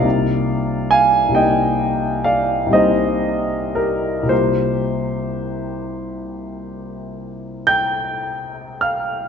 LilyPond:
<<
  \new Staff \with { instrumentName = "Grand piano" } { \time 9/8 \key c \minor \tempo 4. = 38 <d'' f''>4 <f'' aes''>8 <ees'' g''>4 <d'' f''>8 <c'' ees''>4 <g' bes'>8 | <g' c''>2. <g'' g'''>4 <f'' f'''>8 | }
  \new Staff \with { instrumentName = "Grand piano" } { \clef bass \time 9/8 \key c \minor <c, c g bes ees'>4. <c, c g bes ees'>4. <c, c g bes ees'>4. | <c, c g bes f'>1~ <c, c g bes f'>8 | }
>>